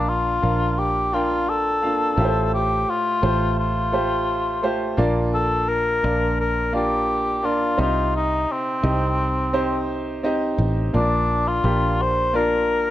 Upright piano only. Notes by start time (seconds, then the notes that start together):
Already playing: A#2 D4 F4 A#4 F5
0.42 D4 F4 A#4 F5
1.12 D4 F4 A#4 G5
1.82 A#3 D4 F4 F5
2.17 A2 A3 F4 G4 A#4
2.24 C5
3.22 A3 F4 G4 C5
3.92 A3 F4 G4 C5
4.63 A3 F4 G4 C5
4.97 A#2 A#3 D4 F4 D5
6.03 A#3 D4 F4 D5
6.73 A#3 D4 F4 D5
7.43 A#3 D4 F4 D5
7.77 C3 C4 D#4 G4 D#5
8.83 C4 D#4 G4 D#5
9.53 C4 D#4 G4 C5
10.23 C4 D#4 G4 D#5
10.93 A#2 A#3 D4 F4 D5
11.63 A#3 D4 F4 G4
12.33 A#3 D4 F4 D5